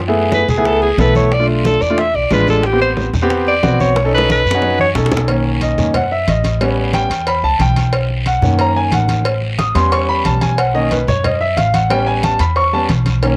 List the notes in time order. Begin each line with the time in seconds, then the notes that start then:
Already playing: F#2
0.00 high conga
0.08 A3 B3 E4 G#4
0.16 high conga
0.32 B4, high bongo, high conga, short guiro
0.48 C#2 G#4, high bongo, high conga, low conga, short guiro
0.58 A3 B3 E4 G#4
0.65 A4, high bongo, high conga, long guiro
0.82 G#4, high bongo, high conga
0.98 B1 A3 B3 E4 A4 B4, high bongo, low bongo, high conga, short guiro
1.15 C#5, high bongo, high conga, short guiro
1.32 D5, high bongo, high conga, long guiro
1.39 A3 D4 F4
1.49 F4, high conga
1.65 A4, high bongo, high conga, short guiro
1.81 E2 D5, high bongo, high conga, short guiro
1.90 A3 D4 F4
1.98 E5, high bongo, high conga, long guiro
2.14 B1 D5, high bongo, high conga
2.31 A1 G#3 D4 F4 B4, high bongo, low bongo, high conga, short guiro
2.47 A4, high bongo, high conga, short guiro
2.63 G4, high bongo, high conga, long guiro
2.72 B3 C4 G4
2.81 C5, high conga
2.97 high bongo, high conga, short guiro
3.13 E2, high bongo, high conga, low conga, short guiro
3.22 B3 C4 G4
3.30 high bongo, high conga, long guiro
3.47 D5, high bongo, high conga
3.63 B1 B3 C4 F#4, high bongo, low bongo, high conga, short guiro
3.79 C#5, high bongo, high conga, short guiro
3.96 high bongo, high conga, long guiro
4.05 C#4 D#4 A4
4.13 B4, high conga
4.18 high bongo
4.30 B4, high conga, short guiro
4.45 F#2, high conga, short guiro
4.51 C#4 D#4 F#4, low bongo
4.62 low bongo, high conga, long guiro
4.79 C#5, high conga
4.95 B1 C#4 D#4 A4, low bongo, low conga, short guiro
5.06 low bongo
5.11 low conga, short guiro
5.17 low bongo
5.28 D#3 A#3 C#4, cowbell, high conga, long guiro
5.45 high conga
5.61 D#5, cowbell, high conga, short guiro
5.78 F#2 D#3 A#3 C#4, high conga, low conga, short guiro
5.94 F#5, cowbell, high conga, low conga, long guiro
6.11 E5, high conga
6.27 A1 D#5, cowbell, high conga, short guiro
6.44 cowbell, high conga, short guiro
6.61 G3 B3 C#4, cowbell, long guiro
6.77 high conga
6.93 G5, cowbell, high conga, short guiro
7.10 E2, cowbell, high conga, short guiro
7.27 B5, cowbell, high conga, long guiro
7.43 C#2 A5, high conga
7.59 B1 G5, cowbell, high conga, short guiro
7.76 cowbell, high conga, short guiro
7.93 cowbell, high conga, long guiro
8.10 high conga
8.26 F#5, cowbell, high conga, short guiro
8.42 F#2 D#3 A#3 C#4, high conga, low conga, short guiro
8.59 A#5, cowbell, high conga, long guiro
8.76 G#5, high conga
8.91 A1 F#5, cowbell, high conga, short guiro
9.08 cowbell, high conga, short guiro
9.25 cowbell, high conga, long guiro
9.42 high conga
9.59 D#6, cowbell, high conga, short guiro
9.75 E2 G3 B3 C#4 C6, cowbell, high conga, short guiro
9.92 C#6, cowbell, high conga, long guiro
10.09 B5, high conga
10.25 B1 A5, cowbell, high conga, short guiro
10.41 G#5, cowbell, high conga, short guiro
10.58 F#5, cowbell, high conga, long guiro
10.74 D#3 A#3 C#4 D#5, high conga
10.91 B4, cowbell, high conga, short guiro
11.07 F#2 C#5, high conga, low conga, short guiro
11.24 D#5, cowbell, high conga, low conga, long guiro
11.41 E5, high conga
11.56 A1 F5, cowbell, high conga, short guiro
11.74 F#5, cowbell, high conga, short guiro
11.90 G3 B3 C#4 G5, cowbell, long guiro
12.07 G#5, high conga
12.23 A5, cowbell, high conga, short guiro
12.39 E2 B5, cowbell, high conga, short guiro
12.56 C#6, cowbell, high conga, long guiro
12.73 G3 B3 C#4 A5, high conga
12.89 B1, cowbell, high conga, short guiro
13.06 cowbell, high conga, short guiro
13.22 D#3 A#3 C#4, cowbell, high conga, long guiro